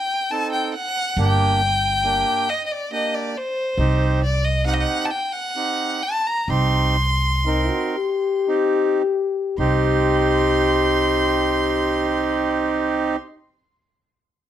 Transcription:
Already playing: violin G5
0.31 accordion C4 D#4 A4, violin A5
0.52 violin G5
0.74 violin F#5
1.17 upright bass G1, accordion A#3 D4 G4, violin G5
2.04 accordion A#3 D4 G4
2.49 violin D#5
2.66 violin D#5
2.72 violin D5
2.92 accordion A#3 D4 G4, violin D#5
3.15 violin D5
3.37 violin C5
3.77 upright bass C2, accordion C4 D#4 G4
4.24 violin D5
4.45 violin D#5
4.65 accordion C4 D#4 G4, violin F#5
4.74 violin D#5
4.80 violin F#5
5.05 violin A5
5.11 violin G5
5.25 violin G5
5.33 violin F#5
5.56 accordion C4 D#4 G4
6.03 violin A5
6.27 violin A#5
6.48 upright bass C2, accordion C4 D#4 G4, violin C6
7.45 accordion C4 D#4 A#4, trombone D#4
7.70 trombone F#4
7.96 trombone G4
8.48 accordion C4 D#4 G4
9.58 upright bass C2, accordion C4 D#4 G4, trombone G4, violin C6

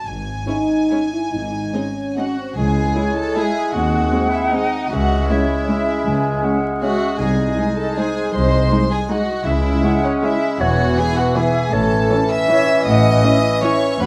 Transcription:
0.04 double bass section G#1, cello section G#2, violin section G#5
0.46 viola section G#3 C#4, french horn section D#4, violin section E4 C#5
0.91 viola section G#3 C#4, violin section E4 C#5
1.13 french horn section E4
1.32 double bass section G#1, cello section G#2, french horn section D#4
1.73 viola section G#3 C4, french horn section C#4, violin section D#4 D#5
2.16 viola section G#3 C4, violin section D#4 F#4 D#5 F#5
2.38 french horn section C4
2.57 cello section C#2, double bass section C#2, bassoon G#3, clarinet E4, violin section G#4 G#5
2.95 viola section G#3 E4, french horn section G#3 E4, flute C#5
3.16 violin section A4 A5
3.35 viola section G#3 E4, french horn section G#3 E4, violin section G#4 G#5, flute E5
3.73 double bass section D#2, cello section D#2, clarinet C4, violin section F#4 F#5, flute F#5
4.12 viola section G#3 C4, french horn section G#3 C4
4.32 violin section E4 E5
4.52 viola section G#3 C4, french horn section G#3 C4, violin section D#4 D#5
4.90 cello section C#2, double bass section C#2, bassoon G#3, clarinet C#4, violin section F#4 F#5, flute E5
5.28 viola section G#3 C#4, french horn section G#3 C#4, violin section E4 E5, flute C#5
5.68 viola section G#3 C#4, french horn section G#3 C#4, flute E5
6.06 cello section C#2, double bass section C#2, flute G#5
6.43 viola section G#3 C#4, french horn section G#3 C#4, flute F#5
6.81 french horn section G#3 C#4, viola section G#3 C#4, violin section F#4 F#5, flute E5
7.19 double bass section C2, cello section C2, bassoon G#3, clarinet D#4, violin section G#4 G#5, flute D#5
7.57 french horn section G#3 D#4, viola section G#3 D#4
7.76 violin section A4 A5
7.97 french horn section G#3 D#4, viola section G#3 D#4, violin section G#4 G#5, flute C5
8.34 cello section C2, double bass section C2, violin section C5 C6, flute D#5
8.71 viola section G#3 D#4, french horn section G#3 D#4
8.91 violin section G#4 G#5
9.09 viola section G#3 D#4, french horn section G#3 D#4, violin section F#4 F#5, flute D#5
9.45 double bass section C#2, cello section C#2, bassoon G#3, clarinet C#4, violin section E4 E5, flute E5
9.83 viola section G#3 C#4, french horn section G#3 E4, flute F#5
10.04 violin section C#4 C#5
10.23 french horn section G#3 E4, viola section G#3 C#4, violin section E4 E5, flute E5
10.60 double bass section E1, cello section E2, bassoon E3, clarinet B3, violin section F#4 F#5, flute C#5
10.97 viola section E3 B3, french horn section B3 E4, violin section G#4 G#5, flute B4
11.16 violin section F#4 F#5
11.35 viola section E3 B3, french horn section B3 E4, violin section G#4 G#5, flute E5
11.71 double bass section A1, cello section A2, bassoon E3, clarinet C#4, violin section A4 A5, flute C#5
12.09 viola section E3 C#4, french horn section C#4 E4
12.29 violin section E5 E6
12.49 viola section E3 C#4, french horn section C#4 E4, flute C#5
12.85 double bass section A1, cello section A2, violin section D#5 D#6, flute F#5
13.24 viola section E3 C#4, french horn section C#4 E4, flute E5
13.63 viola section E3 C#4, french horn section C#4 E4, violin section C#5 C#6
14.00 cello section D#2, double bass section D#2, bassoon F#3, clarinet C#4, violin section B4 B5, flute F#5

